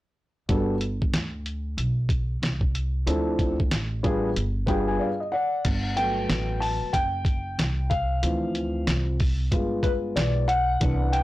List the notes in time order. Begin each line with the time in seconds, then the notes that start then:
0.49 G1 G3 B3 D4 F#4 A4, kick, closed hi-hat
0.81 closed hi-hat
1.02 kick
1.14 D2, snare, closed hi-hat
1.46 closed hi-hat
1.77 B1, closed hi-hat
2.09 kick, closed hi-hat
2.42 C2, snare, closed hi-hat
2.61 kick
2.75 closed hi-hat
3.06 D2 F3 C4 D4 E4 A4, closed hi-hat
3.39 kick, closed hi-hat
3.60 kick
3.71 A1, snare, closed hi-hat
4.03 G3 B3 D4 F4 G#4, kick, closed hi-hat
4.36 G1, closed hi-hat
4.66 G3 B3 D4 F4 G#4 B4 G5, kick, closed hi-hat
4.88 G#5
4.99 D5 F5
5.20 D#5
5.32 D5 F#5
5.65 G1, kick, closed hi-hat, crash
5.97 F#3 A3 B3 G5, closed hi-hat
6.29 A1, snare, closed hi-hat
6.60 A5, open hi-hat
6.82 muted upright bass stroke
6.93 F#1 G5, kick, closed hi-hat
7.25 kick, closed hi-hat
7.59 C2, snare, closed hi-hat
7.90 F5, kick, closed hi-hat
8.22 D2 E3 F3 C4, closed hi-hat
8.55 closed hi-hat
8.87 C2, snare, closed hi-hat
9.20 kick, open hi-hat
9.51 G1 G#3 B3 F4, kick, closed hi-hat
9.83 B4, kick, closed hi-hat
10.16 B1 D5, snare, closed hi-hat
10.48 F#5, closed hi-hat
10.80 C2 E3 B3 D4, kick, closed hi-hat
11.12 G5, closed hi-hat